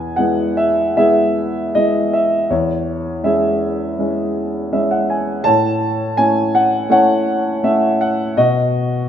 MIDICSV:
0, 0, Header, 1, 2, 480
1, 0, Start_track
1, 0, Key_signature, 4, "major"
1, 0, Tempo, 776197
1, 1550, Time_signature, 4, 2, 24, 8
1, 1550, Tempo, 734394
1, 5852, End_track
2, 0, Start_track
2, 0, Title_t, "Grand piano"
2, 0, Program_c, 0, 0
2, 0, Control_c, 0, 64, 127
2, 0, Note_on_c, 0, 40, 49
2, 0, Note_on_c, 0, 71, 53
2, 0, Note_on_c, 0, 80, 74
2, 101, Note_on_c, 0, 78, 70
2, 112, Note_on_c, 0, 56, 39
2, 117, Note_on_c, 0, 59, 38
2, 118, Note_on_c, 0, 64, 44
2, 121, Note_off_c, 0, 80, 0
2, 353, Note_on_c, 0, 76, 71
2, 358, Note_off_c, 0, 78, 0
2, 578, Note_off_c, 0, 71, 0
2, 588, Note_off_c, 0, 56, 0
2, 589, Note_off_c, 0, 59, 0
2, 591, Note_off_c, 0, 64, 0
2, 591, Note_off_c, 0, 76, 0
2, 597, Note_on_c, 0, 56, 38
2, 599, Note_on_c, 0, 59, 37
2, 600, Note_on_c, 0, 76, 73
2, 603, Note_on_c, 0, 64, 40
2, 609, Note_on_c, 0, 68, 53
2, 1068, Note_off_c, 0, 56, 0
2, 1069, Note_off_c, 0, 59, 0
2, 1072, Note_off_c, 0, 64, 0
2, 1081, Note_on_c, 0, 75, 69
2, 1082, Note_on_c, 0, 56, 36
2, 1086, Note_on_c, 0, 59, 31
2, 1087, Note_on_c, 0, 64, 40
2, 1099, Note_off_c, 0, 76, 0
2, 1320, Note_on_c, 0, 76, 65
2, 1325, Note_off_c, 0, 75, 0
2, 1526, Note_off_c, 0, 40, 0
2, 1529, Note_off_c, 0, 68, 0
2, 1535, Note_off_c, 0, 56, 0
2, 1537, Note_off_c, 0, 59, 0
2, 1537, Note_off_c, 0, 64, 0
2, 1547, Note_on_c, 0, 40, 55
2, 1550, Note_on_c, 0, 73, 65
2, 1557, Note_off_c, 0, 76, 0
2, 1558, Note_on_c, 0, 64, 51
2, 1559, Control_c, 0, 64, 0
2, 1652, Control_c, 0, 64, 127
2, 2025, Note_off_c, 0, 64, 0
2, 2028, Note_on_c, 0, 56, 39
2, 2031, Note_on_c, 0, 76, 61
2, 2032, Note_on_c, 0, 61, 38
2, 2035, Note_on_c, 0, 64, 46
2, 2039, Note_on_c, 0, 68, 47
2, 2047, Note_off_c, 0, 73, 0
2, 2500, Note_off_c, 0, 56, 0
2, 2503, Note_off_c, 0, 61, 0
2, 2504, Note_off_c, 0, 64, 0
2, 2520, Note_on_c, 0, 56, 41
2, 2523, Note_on_c, 0, 61, 36
2, 2524, Note_on_c, 0, 64, 47
2, 2733, Note_off_c, 0, 76, 0
2, 2975, Note_off_c, 0, 68, 0
2, 2985, Note_off_c, 0, 56, 0
2, 2986, Note_off_c, 0, 61, 0
2, 2987, Note_off_c, 0, 64, 0
2, 2997, Note_on_c, 0, 56, 40
2, 3001, Note_on_c, 0, 61, 39
2, 3002, Note_on_c, 0, 76, 52
2, 3007, Note_on_c, 0, 64, 39
2, 3110, Note_off_c, 0, 76, 0
2, 3121, Note_on_c, 0, 78, 57
2, 3230, Note_off_c, 0, 78, 0
2, 3244, Note_on_c, 0, 80, 54
2, 3448, Note_off_c, 0, 40, 0
2, 3461, Note_off_c, 0, 56, 0
2, 3463, Note_off_c, 0, 61, 0
2, 3463, Note_off_c, 0, 80, 0
2, 3466, Note_off_c, 0, 64, 0
2, 3467, Note_on_c, 0, 81, 90
2, 3477, Note_on_c, 0, 73, 65
2, 3485, Control_c, 0, 64, 0
2, 3485, Note_on_c, 0, 45, 62
2, 3582, Control_c, 0, 64, 127
2, 3947, Note_on_c, 0, 80, 84
2, 3953, Note_on_c, 0, 57, 44
2, 3953, Note_on_c, 0, 61, 40
2, 3958, Note_on_c, 0, 64, 47
2, 3966, Note_off_c, 0, 81, 0
2, 4191, Note_on_c, 0, 78, 82
2, 4196, Note_off_c, 0, 80, 0
2, 4404, Note_off_c, 0, 73, 0
2, 4408, Note_off_c, 0, 57, 0
2, 4410, Note_off_c, 0, 61, 0
2, 4415, Note_off_c, 0, 64, 0
2, 4418, Note_on_c, 0, 57, 47
2, 4420, Note_on_c, 0, 61, 46
2, 4422, Note_off_c, 0, 78, 0
2, 4425, Note_on_c, 0, 64, 50
2, 4432, Note_on_c, 0, 78, 87
2, 4434, Note_on_c, 0, 73, 63
2, 4885, Note_off_c, 0, 57, 0
2, 4886, Note_off_c, 0, 61, 0
2, 4889, Note_off_c, 0, 64, 0
2, 4902, Note_on_c, 0, 57, 46
2, 4903, Note_on_c, 0, 61, 38
2, 4906, Note_on_c, 0, 76, 70
2, 4908, Note_on_c, 0, 64, 46
2, 4921, Note_off_c, 0, 78, 0
2, 5147, Note_on_c, 0, 78, 76
2, 5153, Note_off_c, 0, 76, 0
2, 5361, Note_off_c, 0, 73, 0
2, 5363, Note_off_c, 0, 45, 0
2, 5369, Note_off_c, 0, 57, 0
2, 5370, Note_off_c, 0, 61, 0
2, 5372, Note_off_c, 0, 64, 0
2, 5383, Note_on_c, 0, 47, 63
2, 5384, Note_on_c, 0, 75, 75
2, 5387, Note_on_c, 0, 66, 52
2, 5393, Note_off_c, 0, 78, 0
2, 5393, Control_c, 0, 64, 0
2, 5498, Control_c, 0, 64, 127
2, 5852, Note_off_c, 0, 47, 0
2, 5852, Note_off_c, 0, 66, 0
2, 5852, Note_off_c, 0, 75, 0
2, 5852, End_track
0, 0, End_of_file